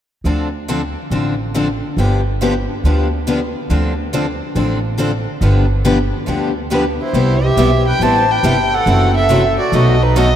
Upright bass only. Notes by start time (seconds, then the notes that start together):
0.24 D2
1.10 A1
1.97 G1
2.83 D2
3.70 D2
4.55 A1
5.41 G1
6.27 D2
7.13 C2
7.57 B1
7.99 A1
8.43 G1
8.86 F#1
9.72 B1